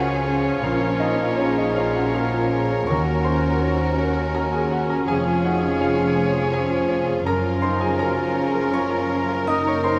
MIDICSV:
0, 0, Header, 1, 12, 480
1, 0, Start_track
1, 0, Key_signature, -5, "major"
1, 0, Tempo, 748130
1, 402, Time_signature, 3, 2, 24, 8
1, 1848, Tempo, 728155
1, 5208, Tempo, 740741
1, 6513, End_track
2, 0, Start_track
2, 0, Title_t, "Flute"
2, 0, Program_c, 0, 73
2, 0, Note_on_c, 0, 80, 60
2, 406, Note_on_c, 0, 82, 57
2, 416, Note_off_c, 0, 80, 0
2, 3115, Note_off_c, 0, 82, 0
2, 3290, Note_on_c, 0, 80, 58
2, 4699, Note_off_c, 0, 80, 0
2, 4723, Note_on_c, 0, 82, 57
2, 6513, Note_off_c, 0, 82, 0
2, 6513, End_track
3, 0, Start_track
3, 0, Title_t, "Oboe"
3, 0, Program_c, 1, 68
3, 0, Note_on_c, 1, 73, 58
3, 1824, Note_off_c, 1, 73, 0
3, 1846, Note_on_c, 1, 70, 54
3, 3088, Note_off_c, 1, 70, 0
3, 3290, Note_on_c, 1, 73, 56
3, 4698, Note_off_c, 1, 73, 0
3, 4729, Note_on_c, 1, 70, 57
3, 6513, Note_off_c, 1, 70, 0
3, 6513, End_track
4, 0, Start_track
4, 0, Title_t, "French horn section"
4, 0, Program_c, 2, 60
4, 0, Note_on_c, 2, 70, 66
4, 158, Note_on_c, 2, 68, 56
4, 169, Note_off_c, 2, 70, 0
4, 398, Note_off_c, 2, 68, 0
4, 413, Note_on_c, 2, 70, 69
4, 880, Note_off_c, 2, 70, 0
4, 884, Note_on_c, 2, 68, 64
4, 1368, Note_off_c, 2, 68, 0
4, 1373, Note_on_c, 2, 70, 60
4, 1611, Note_off_c, 2, 70, 0
4, 1612, Note_on_c, 2, 68, 57
4, 1847, Note_on_c, 2, 70, 68
4, 1848, Note_off_c, 2, 68, 0
4, 2325, Note_off_c, 2, 70, 0
4, 2332, Note_on_c, 2, 72, 65
4, 2564, Note_on_c, 2, 70, 58
4, 2568, Note_off_c, 2, 72, 0
4, 2804, Note_on_c, 2, 66, 60
4, 2806, Note_off_c, 2, 70, 0
4, 3282, Note_off_c, 2, 66, 0
4, 3286, Note_on_c, 2, 68, 70
4, 4237, Note_on_c, 2, 72, 72
4, 4244, Note_off_c, 2, 68, 0
4, 4712, Note_off_c, 2, 72, 0
4, 4727, Note_on_c, 2, 70, 59
4, 5207, Note_off_c, 2, 70, 0
4, 5208, Note_on_c, 2, 66, 61
4, 5448, Note_off_c, 2, 66, 0
4, 5450, Note_on_c, 2, 68, 60
4, 5684, Note_off_c, 2, 68, 0
4, 5694, Note_on_c, 2, 70, 75
4, 6513, Note_off_c, 2, 70, 0
4, 6513, End_track
5, 0, Start_track
5, 0, Title_t, "Violin section"
5, 0, Program_c, 3, 48
5, 0, Note_on_c, 3, 68, 62
5, 373, Note_off_c, 3, 68, 0
5, 398, Note_on_c, 3, 70, 57
5, 3264, Note_off_c, 3, 70, 0
5, 3290, Note_on_c, 3, 68, 53
5, 4699, Note_off_c, 3, 68, 0
5, 4729, Note_on_c, 3, 70, 61
5, 6513, Note_off_c, 3, 70, 0
5, 6513, End_track
6, 0, Start_track
6, 0, Title_t, "Grand piano"
6, 0, Program_c, 4, 0
6, 0, Control_c, 4, 64, 127
6, 0, Note_on_c, 4, 37, 61
6, 0, Note_on_c, 4, 61, 52
6, 0, Note_on_c, 4, 63, 48
6, 0, Note_on_c, 4, 65, 51
6, 0, Note_on_c, 4, 66, 54
6, 0, Note_on_c, 4, 68, 54
6, 0, Note_on_c, 4, 70, 53
6, 0, Note_on_c, 4, 73, 53
6, 0, Note_on_c, 4, 77, 65
6, 0, Note_on_c, 4, 78, 69
6, 0, Note_on_c, 4, 80, 72
6, 0, Note_on_c, 4, 82, 66
6, 50, Note_off_c, 4, 65, 0
6, 50, Note_on_c, 4, 65, 51
6, 119, Note_off_c, 4, 61, 0
6, 173, Note_on_c, 4, 61, 52
6, 238, Note_off_c, 4, 65, 0
6, 286, Note_off_c, 4, 73, 0
6, 286, Note_on_c, 4, 73, 50
6, 359, Note_off_c, 4, 61, 0
6, 376, Note_off_c, 4, 37, 0
6, 380, Note_off_c, 4, 78, 0
6, 384, Note_off_c, 4, 66, 0
6, 403, Note_off_c, 4, 73, 0
6, 405, Note_off_c, 4, 77, 0
6, 405, Note_on_c, 4, 34, 61
6, 405, Note_on_c, 4, 77, 72
6, 411, Note_on_c, 4, 65, 57
6, 414, Note_off_c, 4, 80, 0
6, 414, Control_c, 4, 64, 0
6, 415, Note_off_c, 4, 82, 0
6, 418, Note_off_c, 4, 63, 0
6, 418, Note_off_c, 4, 68, 0
6, 418, Note_off_c, 4, 70, 0
6, 509, Note_off_c, 4, 65, 0
6, 519, Note_on_c, 4, 65, 49
6, 521, Control_c, 4, 64, 127
6, 626, Note_off_c, 4, 77, 0
6, 641, Note_on_c, 4, 75, 65
6, 642, Note_on_c, 4, 63, 45
6, 712, Note_off_c, 4, 65, 0
6, 762, Note_off_c, 4, 63, 0
6, 764, Note_on_c, 4, 65, 53
6, 867, Note_off_c, 4, 75, 0
6, 882, Note_on_c, 4, 73, 72
6, 892, Note_on_c, 4, 61, 55
6, 958, Note_off_c, 4, 65, 0
6, 996, Note_off_c, 4, 73, 0
6, 1001, Note_off_c, 4, 61, 0
6, 1010, Note_on_c, 4, 65, 48
6, 1016, Note_on_c, 4, 75, 63
6, 1023, Note_on_c, 4, 63, 48
6, 1124, Note_off_c, 4, 75, 0
6, 1128, Note_off_c, 4, 63, 0
6, 1128, Note_off_c, 4, 65, 0
6, 1129, Note_on_c, 4, 73, 49
6, 1130, Note_on_c, 4, 77, 67
6, 1138, Note_on_c, 4, 65, 49
6, 1240, Note_off_c, 4, 65, 0
6, 1241, Note_off_c, 4, 77, 0
6, 1249, Note_on_c, 4, 65, 47
6, 1256, Note_on_c, 4, 78, 62
6, 1263, Note_on_c, 4, 66, 49
6, 1321, Note_off_c, 4, 73, 0
6, 1364, Note_off_c, 4, 78, 0
6, 1366, Note_off_c, 4, 65, 0
6, 1368, Note_off_c, 4, 66, 0
6, 1374, Note_on_c, 4, 77, 69
6, 1375, Note_on_c, 4, 61, 54
6, 1376, Note_on_c, 4, 65, 50
6, 1490, Note_off_c, 4, 65, 0
6, 1499, Note_on_c, 4, 65, 51
6, 1563, Note_off_c, 4, 61, 0
6, 1623, Note_on_c, 4, 61, 46
6, 1686, Note_off_c, 4, 65, 0
6, 1743, Note_on_c, 4, 73, 47
6, 1806, Note_off_c, 4, 61, 0
6, 1822, Note_off_c, 4, 34, 0
6, 1824, Note_off_c, 4, 77, 0
6, 1841, Note_on_c, 4, 85, 77
6, 1845, Note_off_c, 4, 73, 0
6, 1855, Note_on_c, 4, 73, 59
6, 1858, Control_c, 4, 64, 0
6, 1862, Note_on_c, 4, 39, 58
6, 1970, Control_c, 4, 64, 127
6, 1976, Note_on_c, 4, 66, 48
6, 2067, Note_off_c, 4, 85, 0
6, 2075, Note_off_c, 4, 73, 0
6, 2086, Note_on_c, 4, 84, 67
6, 2093, Note_on_c, 4, 72, 53
6, 2105, Note_on_c, 4, 65, 45
6, 2163, Note_off_c, 4, 66, 0
6, 2215, Note_off_c, 4, 65, 0
6, 2219, Note_on_c, 4, 66, 50
6, 2340, Note_on_c, 4, 73, 53
6, 2403, Note_off_c, 4, 66, 0
6, 2461, Note_on_c, 4, 66, 47
6, 2523, Note_off_c, 4, 73, 0
6, 2574, Note_on_c, 4, 73, 50
6, 2644, Note_off_c, 4, 66, 0
6, 2696, Note_on_c, 4, 70, 46
6, 2762, Note_off_c, 4, 73, 0
6, 2779, Note_off_c, 4, 84, 0
6, 2782, Note_off_c, 4, 72, 0
6, 2813, Note_off_c, 4, 70, 0
6, 2813, Note_on_c, 4, 82, 70
6, 2817, Note_on_c, 4, 61, 49
6, 2823, Note_on_c, 4, 70, 54
6, 2923, Note_off_c, 4, 82, 0
6, 2928, Note_off_c, 4, 70, 0
6, 2931, Note_on_c, 4, 80, 63
6, 2933, Note_on_c, 4, 66, 50
6, 2942, Note_on_c, 4, 68, 50
6, 3006, Note_off_c, 4, 61, 0
6, 3043, Note_off_c, 4, 80, 0
6, 3048, Note_off_c, 4, 68, 0
6, 3055, Note_off_c, 4, 66, 0
6, 3055, Note_on_c, 4, 61, 48
6, 3056, Note_on_c, 4, 78, 69
6, 3064, Note_on_c, 4, 66, 51
6, 3166, Note_off_c, 4, 78, 0
6, 3171, Note_off_c, 4, 66, 0
6, 3174, Note_on_c, 4, 70, 49
6, 3179, Note_on_c, 4, 82, 60
6, 3247, Note_off_c, 4, 61, 0
6, 3274, Note_off_c, 4, 39, 0
6, 3288, Note_off_c, 4, 82, 0
6, 3294, Note_off_c, 4, 70, 0
6, 3298, Note_on_c, 4, 80, 76
6, 3299, Note_on_c, 4, 41, 61
6, 3303, Control_c, 4, 64, 0
6, 3305, Note_on_c, 4, 68, 54
6, 3398, Control_c, 4, 64, 127
6, 3424, Note_on_c, 4, 65, 46
6, 3518, Note_off_c, 4, 80, 0
6, 3522, Note_off_c, 4, 68, 0
6, 3539, Note_on_c, 4, 78, 65
6, 3540, Note_on_c, 4, 63, 44
6, 3543, Note_on_c, 4, 66, 48
6, 3609, Note_off_c, 4, 65, 0
6, 3655, Note_off_c, 4, 63, 0
6, 3661, Note_on_c, 4, 65, 50
6, 3756, Note_off_c, 4, 78, 0
6, 3758, Note_off_c, 4, 66, 0
6, 3775, Note_on_c, 4, 73, 52
6, 3780, Note_off_c, 4, 65, 0
6, 3783, Note_on_c, 4, 77, 72
6, 3790, Note_on_c, 4, 65, 53
6, 3881, Note_off_c, 4, 65, 0
6, 3891, Note_on_c, 4, 65, 52
6, 3962, Note_off_c, 4, 73, 0
6, 4010, Note_on_c, 4, 73, 48
6, 4081, Note_off_c, 4, 65, 0
6, 4128, Note_on_c, 4, 68, 51
6, 4200, Note_off_c, 4, 73, 0
6, 4228, Note_off_c, 4, 77, 0
6, 4245, Note_on_c, 4, 61, 55
6, 4258, Note_on_c, 4, 80, 74
6, 4259, Note_off_c, 4, 68, 0
6, 4269, Note_on_c, 4, 68, 55
6, 4370, Note_on_c, 4, 65, 52
6, 4437, Note_off_c, 4, 61, 0
6, 4485, Note_on_c, 4, 61, 47
6, 4560, Note_off_c, 4, 65, 0
6, 4596, Note_off_c, 4, 68, 0
6, 4606, Note_on_c, 4, 68, 50
6, 4677, Note_off_c, 4, 61, 0
6, 4703, Note_off_c, 4, 41, 0
6, 4705, Note_off_c, 4, 80, 0
6, 4726, Note_off_c, 4, 68, 0
6, 4729, Note_on_c, 4, 42, 58
6, 4738, Note_on_c, 4, 82, 79
6, 4739, Control_c, 4, 64, 0
6, 4746, Note_on_c, 4, 70, 58
6, 4832, Control_c, 4, 64, 127
6, 4850, Note_on_c, 4, 65, 51
6, 4955, Note_off_c, 4, 82, 0
6, 4959, Note_off_c, 4, 70, 0
6, 4971, Note_on_c, 4, 84, 73
6, 4972, Note_on_c, 4, 63, 47
6, 4979, Note_on_c, 4, 72, 57
6, 5039, Note_off_c, 4, 65, 0
6, 5080, Note_off_c, 4, 84, 0
6, 5084, Note_off_c, 4, 72, 0
6, 5088, Note_off_c, 4, 63, 0
6, 5092, Note_on_c, 4, 65, 53
6, 5096, Note_on_c, 4, 80, 70
6, 5101, Note_on_c, 4, 68, 52
6, 5204, Note_off_c, 4, 80, 0
6, 5207, Note_off_c, 4, 68, 0
6, 5210, Note_on_c, 4, 73, 53
6, 5216, Note_on_c, 4, 82, 74
6, 5227, Note_on_c, 4, 70, 60
6, 5282, Note_off_c, 4, 65, 0
6, 5326, Note_on_c, 4, 65, 52
6, 5400, Note_off_c, 4, 73, 0
6, 5447, Note_on_c, 4, 73, 54
6, 5519, Note_off_c, 4, 65, 0
6, 5558, Note_off_c, 4, 70, 0
6, 5568, Note_on_c, 4, 70, 48
6, 5640, Note_off_c, 4, 73, 0
6, 5666, Note_off_c, 4, 82, 0
6, 5683, Note_on_c, 4, 61, 55
6, 5699, Note_on_c, 4, 85, 80
6, 5707, Note_on_c, 4, 73, 60
6, 5760, Note_off_c, 4, 70, 0
6, 5808, Note_on_c, 4, 65, 53
6, 5878, Note_off_c, 4, 61, 0
6, 5930, Note_on_c, 4, 61, 48
6, 6001, Note_off_c, 4, 65, 0
6, 6056, Note_on_c, 4, 70, 52
6, 6123, Note_off_c, 4, 61, 0
6, 6145, Note_off_c, 4, 42, 0
6, 6150, Note_off_c, 4, 85, 0
6, 6154, Note_off_c, 4, 73, 0
6, 6170, Note_on_c, 4, 42, 61
6, 6173, Note_off_c, 4, 70, 0
6, 6178, Note_on_c, 4, 87, 93
6, 6181, Control_c, 4, 64, 0
6, 6182, Note_on_c, 4, 75, 67
6, 6286, Note_off_c, 4, 87, 0
6, 6288, Note_off_c, 4, 75, 0
6, 6290, Note_on_c, 4, 63, 51
6, 6292, Control_c, 4, 64, 127
6, 6307, Note_on_c, 4, 85, 74
6, 6313, Note_on_c, 4, 73, 57
6, 6410, Note_off_c, 4, 85, 0
6, 6410, Note_on_c, 4, 61, 49
6, 6413, Note_off_c, 4, 73, 0
6, 6413, Note_on_c, 4, 84, 77
6, 6422, Note_on_c, 4, 72, 60
6, 6480, Note_off_c, 4, 63, 0
6, 6513, Note_off_c, 4, 42, 0
6, 6513, Note_off_c, 4, 61, 0
6, 6513, Note_off_c, 4, 72, 0
6, 6513, Note_off_c, 4, 84, 0
6, 6513, End_track
7, 0, Start_track
7, 0, Title_t, "Violin section"
7, 0, Program_c, 5, 48
7, 0, Note_on_c, 5, 65, 58
7, 1823, Note_off_c, 5, 65, 0
7, 1854, Note_on_c, 5, 66, 56
7, 3270, Note_off_c, 5, 66, 0
7, 3292, Note_on_c, 5, 65, 53
7, 6144, Note_off_c, 5, 65, 0
7, 6172, Note_on_c, 5, 63, 61
7, 6513, Note_off_c, 5, 63, 0
7, 6513, End_track
8, 0, Start_track
8, 0, Title_t, "Clarinet"
8, 0, Program_c, 6, 71
8, 0, Note_on_c, 6, 61, 59
8, 1821, Note_off_c, 6, 61, 0
8, 1840, Note_on_c, 6, 61, 54
8, 4612, Note_off_c, 6, 61, 0
8, 4724, Note_on_c, 6, 61, 60
8, 6143, Note_off_c, 6, 61, 0
8, 6172, Note_on_c, 6, 63, 59
8, 6513, Note_off_c, 6, 63, 0
8, 6513, End_track
9, 0, Start_track
9, 0, Title_t, "Viola section"
9, 0, Program_c, 7, 48
9, 0, Note_on_c, 7, 61, 61
9, 1823, Note_off_c, 7, 61, 0
9, 1857, Note_on_c, 7, 61, 60
9, 4705, Note_off_c, 7, 61, 0
9, 4726, Note_on_c, 7, 61, 60
9, 6144, Note_off_c, 7, 61, 0
9, 6177, Note_on_c, 7, 58, 61
9, 6513, Note_off_c, 7, 58, 0
9, 6513, End_track
10, 0, Start_track
10, 0, Title_t, "Bassoon"
10, 0, Program_c, 8, 70
10, 0, Note_on_c, 8, 53, 60
10, 1855, Note_on_c, 8, 54, 55
10, 1865, Note_off_c, 8, 53, 0
10, 3118, Note_off_c, 8, 54, 0
10, 3295, Note_on_c, 8, 53, 53
10, 4701, Note_off_c, 8, 53, 0
10, 4729, Note_on_c, 8, 53, 54
10, 6181, Note_on_c, 8, 51, 59
10, 6190, Note_off_c, 8, 53, 0
10, 6513, Note_off_c, 8, 51, 0
10, 6513, End_track
11, 0, Start_track
11, 0, Title_t, "Cello section"
11, 0, Program_c, 10, 48
11, 0, Note_on_c, 10, 49, 62
11, 376, Note_off_c, 10, 49, 0
11, 401, Note_on_c, 10, 46, 60
11, 1820, Note_off_c, 10, 46, 0
11, 1845, Note_on_c, 10, 39, 55
11, 3265, Note_off_c, 10, 39, 0
11, 3290, Note_on_c, 10, 41, 58
11, 4699, Note_off_c, 10, 41, 0
11, 4722, Note_on_c, 10, 42, 61
11, 6513, Note_off_c, 10, 42, 0
11, 6513, End_track
12, 0, Start_track
12, 0, Title_t, "Double bass section"
12, 0, Program_c, 11, 48
12, 0, Note_on_c, 11, 37, 58
12, 376, Note_off_c, 11, 37, 0
12, 402, Note_on_c, 11, 34, 56
12, 1821, Note_off_c, 11, 34, 0
12, 1848, Note_on_c, 11, 39, 59
12, 3267, Note_off_c, 11, 39, 0
12, 3293, Note_on_c, 11, 29, 56
12, 4700, Note_off_c, 11, 29, 0
12, 4729, Note_on_c, 11, 30, 58
12, 6513, Note_off_c, 11, 30, 0
12, 6513, End_track
0, 0, End_of_file